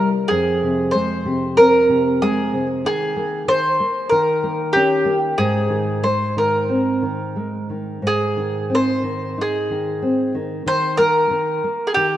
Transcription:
Already playing: nylon-string guitar C3 G3
0.28 nylon-string guitar F2, mandolin G#4
0.63 nylon-string guitar C3
0.91 nylon-string guitar G#3, mandolin C5
1.25 nylon-string guitar C3
1.57 nylon-string guitar C4, mandolin A#4
1.89 nylon-string guitar C3
2.22 nylon-string guitar G#3, mandolin G#4
2.53 nylon-string guitar C3
2.85 nylon-string guitar D#3, mandolin G#4
3.16 nylon-string guitar A#3
3.48 nylon-string guitar D#3, mandolin C5
3.80 nylon-string guitar A#3
4.09 nylon-string guitar D#3, mandolin A#4
4.44 nylon-string guitar A#3
4.73 nylon-string guitar C#4, mandolin G4
5.05 nylon-string guitar A#3
5.38 nylon-string guitar G#2, mandolin G#4
5.70 nylon-string guitar D#3
6.03 nylon-string guitar G#3, mandolin C5
6.37 nylon-string guitar D#3, mandolin A#4
6.69 nylon-string guitar C4
7.02 nylon-string guitar D#3
7.36 nylon-string guitar G#3
7.70 nylon-string guitar D#3
8.02 nylon-string guitar G#2
8.07 mandolin G#4
8.37 nylon-string guitar D#3
8.70 nylon-string guitar C4
8.75 mandolin C5
9.03 nylon-string guitar D#3
9.38 nylon-string guitar D#4, mandolin G#4
9.70 nylon-string guitar D#3
10.02 nylon-string guitar C4
10.35 nylon-string guitar D#3
10.66 nylon-string guitar D#3, mandolin C5
10.97 nylon-string guitar A#3, mandolin A#4
11.31 nylon-string guitar D#3
11.64 nylon-string guitar A#3
11.87 mandolin G#4
11.94 nylon-string guitar D#3, mandolin G4

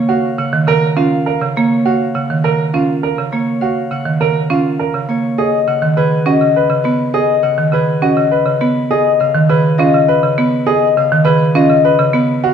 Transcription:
Already playing: harp A#4 C#5 F#5
0.09 grand piano F#4, harp F5
0.38 marimba C#3, harp F#5
0.53 marimba D#3
0.67 marimba C#3, harp A#4, grand piano A#4
0.96 marimba C#4, grand piano F4, harp F5
1.26 grand piano A#4
1.41 marimba C#3
1.56 marimba A#3, harp C#5
1.85 grand piano F#4, harp F5
2.14 marimba C#3, harp F#5
2.30 marimba D#3
2.44 marimba C#3, harp A#4, grand piano A#4
2.73 marimba C#4, grand piano F4, harp F5
3.03 grand piano A#4
3.18 marimba C#3
3.32 marimba A#3, harp C#5
3.61 grand piano F#4, harp F5
3.91 marimba C#3, harp F#5
4.05 marimba D#3
4.21 marimba C#3, grand piano A#4, harp A#4
4.50 marimba C#4, grand piano F4, harp F5
4.79 grand piano A#4
4.94 marimba C#3
5.09 marimba A#3, harp C#5
5.38 grand piano G#4, harp D#5
5.67 marimba C#3, harp F#5
5.82 marimba D#3
5.97 marimba C#3, harp G#4, grand piano B4
6.26 marimba C#4, grand piano F#4, harp D#5
6.41 marimba C#3
6.56 grand piano B4
6.70 marimba C#3
6.84 marimba B3, harp B4
7.14 grand piano G#4, harp D#5
7.43 marimba C#3, harp F#5
7.58 marimba D#3
7.72 marimba C#3, harp G#4, grand piano B4
8.02 marimba C#4, grand piano F#4, harp D#5
8.17 marimba C#3
8.31 grand piano B4
8.46 marimba C#3
8.61 marimba B3, harp B4
8.90 grand piano G#4, harp D#5
9.20 marimba C#3, harp F5
9.35 marimba D#3
9.49 marimba C#3, harp G#4, grand piano B4
9.78 marimba C#4, grand piano F4, harp D#5
9.94 marimba C#3
10.08 grand piano B4
10.23 marimba C#3
10.38 marimba B3, harp B4
10.66 grand piano G#4, harp D#5
10.97 marimba C#3, harp F5
11.12 marimba D#3
11.25 marimba C#3, harp G#4, grand piano B4
11.55 marimba C#4, grand piano F4, harp D#5
11.69 marimba C#3
11.85 grand piano B4
11.99 marimba C#3
12.13 marimba B3, harp B4
12.44 grand piano F#4, harp F5

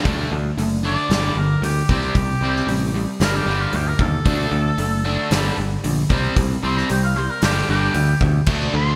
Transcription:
0.05 picked electric bass D2, overdriven electric guitar D3 A3 D4, kick, open hi-hat
0.32 picked electric bass D2, overdriven electric guitar D3 A3
0.58 picked electric bass F#1, overdriven electric guitar D3 A3, open hi-hat
0.85 overdriven electric guitar D3 A3 D4, oboe D5
1.10 picked electric bass G1, overdriven electric guitar G2 D3 G3, snare, open hi-hat
1.36 picked electric bass G1, overdriven electric guitar G2 D3, oboe A#4
1.62 picked electric bass D2, overdriven electric guitar G2 D3, oboe G4, open hi-hat
1.89 picked electric bass C2, overdriven electric guitar C3 G3 C4, oboe G4, kick
2.15 picked electric bass C2, overdriven electric guitar C3 G3, kick, open hi-hat
2.41 picked electric bass C2, overdriven electric guitar C3 G3 C4
2.56 snare
2.67 picked electric bass A1, overdriven electric guitar C3 G3, open hi-hat
2.94 overdriven electric guitar C3 G3
3.20 picked electric bass G1, overdriven electric guitar G2 D3 G3, oboe A#4, snare, open hi-hat
3.36 oboe G4
3.46 picked electric bass G1, overdriven electric guitar G2 D3 G3
3.61 oboe F4
3.73 picked electric bass D2, overdriven electric guitar G2 D3, oboe G4, open hi-hat
3.88 oboe A#4
3.99 picked electric bass D#2, overdriven electric guitar G2 D3, oboe A4, kick
4.25 picked electric bass D2, overdriven electric guitar D3 A3 D4, kick, open hi-hat
4.52 picked electric bass D2, overdriven electric guitar D3 A3
4.78 picked electric bass F#1, overdriven electric guitar D3 A3, open hi-hat
5.05 overdriven electric guitar D3 A3 D4
5.31 picked electric bass G1, overdriven electric guitar G2 D3 G3, snare, open hi-hat
5.58 picked electric bass G1, overdriven electric guitar G2 D3
5.84 picked electric bass A#1, overdriven electric guitar G2 D3, open hi-hat
6.10 picked electric bass C2, overdriven electric guitar C3 G3 C4, kick
6.36 picked electric bass C2, overdriven electric guitar C3 G3, kick, open hi-hat
6.63 picked electric bass C2, overdriven electric guitar C3 G3 C4, oboe C6
6.77 oboe A#5, snare
6.89 picked electric bass C2, overdriven electric guitar C3 G3, oboe G5, open hi-hat
7.04 oboe F5
7.16 overdriven electric guitar C3 G3, oboe C5
7.30 oboe A#4
7.42 picked electric bass G1, overdriven electric guitar G2 D3 G3, oboe G4, snare, open hi-hat
7.69 picked electric bass G1, overdriven electric guitar G2 D3 G3, oboe G4
7.94 picked electric bass D2, overdriven electric guitar G2 D3, open hi-hat
8.21 picked electric bass D2, overdriven electric guitar G2 D3, kick
8.46 picked electric bass D2, overdriven electric guitar D3 A3 D4, distorted electric guitar F#3, kick, crash
8.74 picked electric bass D2, overdriven electric guitar D3 A3, oboe C6

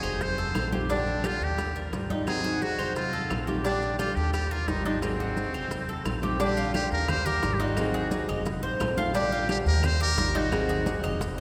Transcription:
Already playing: nylon-string guitar F#3 C4 D#4 G#4, muted trumpet G#4
0.03 upright bass F1, cuban tres C5, high bongo, high conga, claves, maracas
0.21 muted trumpet C5, muted nylon-string guitar stroke, high bongo, high conga, maracas
0.38 cuban tres A4, high conga, maracas
0.55 upright bass A#1, nylon-string guitar D#3 A3 C4 F4, high bongo, low bongo, high conga, claves, maracas
0.72 nylon-string guitar D#3 A3 C4 F4, cuban tres G4, high bongo, high conga, maracas
0.89 nylon-string guitar D3 G3 D4 G4, cuban tres D4, muted trumpet D4, high bongo, high conga, maracas
1.07 high conga, maracas
1.23 nylon-string guitar D3 G3 D4 G4, muted trumpet F4, cuban tres G4, high bongo, high conga, claves, maracas
1.41 upright bass D#2, muted trumpet G4, high conga, maracas
1.58 muted nylon-string guitar stroke, high bongo, high conga, claves, maracas
1.75 cuban tres A#4, high conga, maracas
1.92 upright bass G#1, nylon-string guitar D#3 G3 D#4 F4, high bongo, low bongo, high conga, maracas
2.10 nylon-string guitar G3 D#4 F4, cuban tres D#4, high conga, maracas
2.26 nylon-string guitar D#3 F#3 C4 D#4 G#4, muted trumpet G#4, high bongo, high conga, claves, maracas
2.44 cuban tres F#4, high bongo, high conga, maracas
2.61 nylon-string guitar F#3 C4 D#4 G#4, muted trumpet F#4, high bongo, high conga, maracas
2.79 upright bass F1, cuban tres C5, high bongo, high conga, claves, maracas
2.95 muted trumpet F4, muted nylon-string guitar stroke, high bongo, high conga, maracas
3.13 cuban tres A4, high conga, maracas
3.30 upright bass A#1, nylon-string guitar D#3 A3 C4 F4, high bongo, low bongo, high conga, claves, maracas
3.47 nylon-string guitar D#3 A3 C4 F4, cuban tres G4, high bongo, high conga, maracas
3.63 nylon-string guitar D3 G3 D4 G4, muted trumpet D4, cuban tres D4, high bongo, high conga, maracas
3.82 high conga, maracas
3.98 nylon-string guitar D3 G3 D4 G4, muted trumpet F4, cuban tres G4, high bongo, high conga, claves, maracas
4.16 upright bass D#2, muted trumpet G4, high conga, maracas
4.33 muted trumpet G4, muted nylon-string guitar stroke, high bongo, high conga, claves, maracas
4.51 muted trumpet F4, cuban tres A#4, high conga, maracas
4.68 upright bass G#1, nylon-string guitar D#3 G3 D#4 F4, muted trumpet D#4, high bongo, low bongo, high conga, maracas
4.85 nylon-string guitar G3 D#4 F4, muted trumpet D4, cuban tres D#4, high conga, maracas
5.02 nylon-string guitar D#3 F#3 C4 D#4 G#4, muted trumpet C4, high bongo, high conga, claves, maracas
5.19 cuban tres F#4, high bongo, high conga, maracas
5.36 nylon-string guitar F#3 C4 D#4 G#4, high bongo, high conga, maracas
5.54 upright bass F1, cuban tres C5, high bongo, high conga, claves, maracas
5.71 muted nylon-string guitar stroke, high bongo, high conga, maracas
5.89 cuban tres A4, high conga, maracas
6.04 upright bass A#1, nylon-string guitar D#3 A3 C4 F4, high bongo, low bongo, high conga, claves, maracas
6.22 nylon-string guitar D#3 A3 C4 F4, cuban tres G4, high bongo, high conga, maracas
6.39 nylon-string guitar D3 G3 D4 G4, cuban tres D4, muted trumpet G4, high bongo, high conga, maracas
6.57 cuban tres F4, high bongo, high conga, maracas
6.74 nylon-string guitar D3 G3 D4 G4, muted trumpet G4, high bongo, high conga, claves, maracas
6.91 upright bass D#2, muted trumpet A#4, high bongo, high conga, maracas
7.08 muted trumpet C5, muted nylon-string guitar stroke, high bongo, high conga, low conga, claves, maracas
7.26 cuban tres G4, muted trumpet A#4, high conga, low conga, maracas
7.42 upright bass G#1, nylon-string guitar D#3 G3 D#4 F4, high bongo, low bongo, high conga, maracas
7.54 muted trumpet G4
7.59 nylon-string guitar G3 D#4 F4, cuban tres D#4, muted trumpet F#4, high bongo, maracas
7.77 nylon-string guitar D#3 F#3 C4 D#4 G#4, high bongo, high conga, claves, maracas
7.94 cuban tres G#4, high bongo, high conga
8.11 nylon-string guitar F#3 C4 D#4 G#4, high bongo, high conga, maracas
8.28 upright bass F1, cuban tres D#5, high bongo, high conga, claves, maracas
8.45 muted nylon-string guitar stroke, high bongo, high conga, maracas
8.63 upright bass A1, cuban tres C5, high bongo, high conga
8.79 upright bass A#1, nylon-string guitar D#3 A3 C4 F4, high bongo, low bongo, high conga, claves, maracas
8.97 nylon-string guitar D#3 A3 C4 F4, cuban tres F4, high conga, maracas
9.13 nylon-string guitar D3 G3 D4 G4, cuban tres D4, muted trumpet G4, high bongo, high conga, maracas
9.32 cuban tres F4, high bongo, high conga
9.48 nylon-string guitar D3 G3 D4 G4, muted trumpet G4, high bongo, high conga, claves, maracas
9.66 upright bass D#2, muted trumpet A#4, high bongo, high conga, maracas
9.82 muted trumpet C5, muted nylon-string guitar stroke, high bongo, high conga, low conga, claves, maracas
10.00 cuban tres G4, muted trumpet A#4, high conga, maracas
10.17 upright bass G#1, nylon-string guitar D#3 G3 D#4 F4, high bongo, low bongo, high conga, maracas
10.34 nylon-string guitar G3 D#4 F4, cuban tres D#4, muted trumpet F#4, high bongo, maracas
10.51 nylon-string guitar D#3 F#3 C4 D#4 G#4, high bongo, high conga, claves, maracas
10.69 cuban tres G#4, high bongo, high conga, maracas
10.85 nylon-string guitar F#3 C4 D#4 G#4, high bongo, high conga, maracas
11.03 upright bass F1, cuban tres D#5, high bongo, high conga, claves, maracas
11.20 muted nylon-string guitar stroke, high bongo, high conga, maracas

